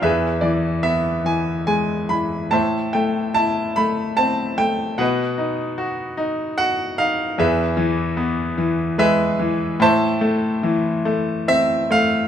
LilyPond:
<<
  \new Staff \with { instrumentName = "Grand piano" } { \time 3/4 \key a \minor \tempo 4 = 73 << { e''8 d''8 e''8 gis''8 gis''8 b''8 | a''8 g''8 a''8 b''8 a''8 g''8 | fis''4. r8 fis''8 f''8 | e''2 e''4 |
a''2 e''8 f''8 | } \\ { <gis' b'>4. r4. | <c'' e''>4. r4. | <b' dis''>4. r4. | <gis' b'>2 <gis' b'>4 |
<c'' e''>2 r4 | } >> }
  \new Staff \with { instrumentName = "Grand piano" } { \time 3/4 \key a \minor e,8 e8 b8 e8 gis8 e8 | a,8 a8 e'8 a8 c'8 a8 | b,8 dis'8 fis'8 dis'8 fis'8 dis'8 | e,8 e8 b8 e8 gis8 e8 |
a,8 a8 e8 a8 c'8 a8 | }
>>